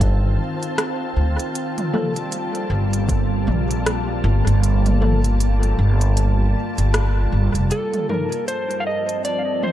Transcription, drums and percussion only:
0.01 kick, closed hi-hat
0.63 closed hi-hat
0.78 cross-stick, closed hi-hat
1.39 closed hi-hat
1.55 closed hi-hat
1.78 closed hi-hat, mid tom
1.94 mid tom
2.16 closed hi-hat
2.32 closed hi-hat
2.55 closed hi-hat
2.93 closed hi-hat
3.09 kick, closed hi-hat
3.48 mid tom
3.71 closed hi-hat
3.86 cross-stick, closed hi-hat
4.47 closed hi-hat
4.63 closed hi-hat
4.86 closed hi-hat, mid tom
5.02 mid tom
5.24 closed hi-hat
5.40 closed hi-hat
5.63 closed hi-hat
6.01 closed hi-hat
6.17 closed hi-hat
6.78 closed hi-hat
6.94 cross-stick, closed hi-hat
7.55 closed hi-hat
7.71 closed hi-hat
7.93 closed hi-hat, mid tom
8.09 mid tom
8.32 closed hi-hat
8.48 closed hi-hat
8.71 closed hi-hat
9.09 closed hi-hat
9.25 closed hi-hat
9.63 mid tom

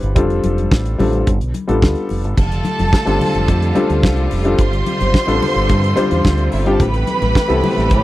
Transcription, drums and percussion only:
0.03 closed hi-hat
0.16 kick, closed hi-hat, muted conga, low conga
0.30 closed hi-hat
0.44 closed hi-hat, muted conga, high conga
0.58 closed hi-hat, high conga
0.71 kick, snare, muted conga
0.86 closed hi-hat
0.99 open hi-hat, muted conga, high conga, low conga
1.13 closed hi-hat
1.27 kick, closed hi-hat, low conga
1.41 closed hi-hat
1.54 closed hi-hat, muted conga, high conga
1.69 closed hi-hat
1.82 kick, snare
1.95 closed hi-hat
2.09 open hi-hat, muted conga
2.24 closed hi-hat
2.37 kick, crash, low conga
2.52 closed hi-hat
2.65 closed hi-hat, muted conga, high conga
2.79 closed hi-hat, high conga
2.93 kick, snare, muted conga
3.07 closed hi-hat
3.21 open hi-hat, muted conga, high conga, low conga
3.34 closed hi-hat
3.48 kick, closed hi-hat, muted conga, low conga
3.62 closed hi-hat
3.75 closed hi-hat, high conga
3.90 closed hi-hat
4.03 kick, snare, muted conga
4.16 closed hi-hat
4.31 open hi-hat, muted conga
4.45 closed hi-hat
4.58 kick, closed hi-hat, low conga
4.73 closed hi-hat
4.86 closed hi-hat, muted conga, high conga
5.01 closed hi-hat, high conga
5.14 kick, snare, muted conga
5.28 closed hi-hat
5.42 open hi-hat, muted conga, high conga, low conga
5.56 snare, closed hi-hat
5.69 kick, closed hi-hat, muted conga, low conga
5.84 closed hi-hat
5.97 closed hi-hat, muted conga, high conga
6.11 closed hi-hat
6.25 kick, snare, muted conga
6.38 closed hi-hat
6.52 open hi-hat
6.66 closed hi-hat
6.80 kick, closed hi-hat, low conga
6.94 closed hi-hat
7.07 closed hi-hat, high conga
7.22 closed hi-hat, high conga
7.35 kick, snare
7.50 closed hi-hat
7.64 open hi-hat, muted conga, high conga, low conga
7.77 snare, closed hi-hat
7.90 kick, closed hi-hat, low conga

